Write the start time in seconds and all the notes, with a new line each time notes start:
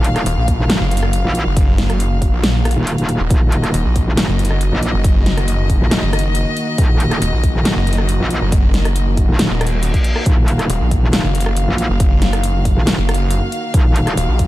Already playing: D#1 D#3 A#3 F#4 F5
0.04 closed hi-hat
0.16 cross-stick, closed hi-hat
0.26 D#1, closed hi-hat
0.38 A#1
0.48 kick, closed hi-hat
0.59 D#1
0.70 snare, closed hi-hat
0.81 F#1
0.91 closed hi-hat
0.97 closed hi-hat
1.03 cross-stick
1.13 closed hi-hat
1.25 A#1
1.35 closed hi-hat
1.46 F#1
1.57 kick, closed hi-hat
1.78 snare, closed hi-hat
1.90 cross-stick, closed hi-hat
2.00 closed hi-hat
2.22 kick, closed hi-hat
2.33 A#1
2.44 snare, closed hi-hat
2.65 cross-stick, closed hi-hat
2.71 closed hi-hat
2.77 D#1
2.87 closed hi-hat
2.98 D#1, closed hi-hat
3.09 closed hi-hat
3.20 D#1
3.30 D#1 D#5, kick, closed hi-hat
3.52 closed hi-hat
3.64 cross-stick, closed hi-hat
3.74 D#1, closed hi-hat
3.85 A#1
3.96 kick, closed hi-hat
4.07 D#1
4.17 snare, closed hi-hat
4.29 F#1
4.39 closed hi-hat
4.45 closed hi-hat
4.51 cross-stick
4.61 closed hi-hat
4.72 A#1
4.83 closed hi-hat
4.94 F#1
5.04 kick, closed hi-hat
5.26 snare, closed hi-hat
5.38 cross-stick, closed hi-hat
5.48 closed hi-hat
5.70 kick, closed hi-hat
5.81 D#1
5.91 snare, closed hi-hat
6.03 F#1
6.13 cross-stick, closed hi-hat
6.19 closed hi-hat
6.35 closed hi-hat
6.57 closed hi-hat
6.78 D#1, kick, closed hi-hat
7.00 closed hi-hat
7.11 cross-stick, closed hi-hat
7.22 D#1, closed hi-hat
7.33 A#1
7.44 kick, closed hi-hat
7.55 D#1
7.65 snare, closed hi-hat
7.77 F#1
7.87 closed hi-hat
7.93 closed hi-hat
7.98 cross-stick
8.09 closed hi-hat
8.20 A#1
8.30 closed hi-hat
8.42 F#1
8.52 kick, closed hi-hat
8.74 snare, closed hi-hat
8.85 cross-stick, closed hi-hat
8.96 closed hi-hat
9.17 kick, closed hi-hat
9.29 D#1
9.39 snare, closed hi-hat, reverse cymbal
9.51 D#1
9.61 cross-stick, closed hi-hat
9.67 closed hi-hat
9.83 closed hi-hat
9.94 kick, closed hi-hat
10.04 closed hi-hat
10.16 cross-stick
10.26 D#1 F5, kick, closed hi-hat
10.48 closed hi-hat
10.59 cross-stick, closed hi-hat
10.70 D#1, closed hi-hat
10.81 A#1
10.91 kick, closed hi-hat
11.03 D#1
11.13 snare, closed hi-hat
11.24 F#1
11.35 closed hi-hat
11.41 closed hi-hat
11.46 cross-stick
11.57 closed hi-hat
11.68 A#1
11.78 closed hi-hat
11.90 F#1
12.00 kick, closed hi-hat
12.22 snare, closed hi-hat
12.33 cross-stick, closed hi-hat
12.44 closed hi-hat
12.65 kick, closed hi-hat
12.77 D#1
12.87 snare, closed hi-hat
12.98 F#1
13.09 cross-stick, closed hi-hat
13.14 closed hi-hat
13.31 closed hi-hat
13.52 closed hi-hat
13.74 D#1, kick, closed hi-hat
13.96 closed hi-hat
14.07 cross-stick, closed hi-hat
14.17 D#1, closed hi-hat
14.29 A#1
14.39 kick, closed hi-hat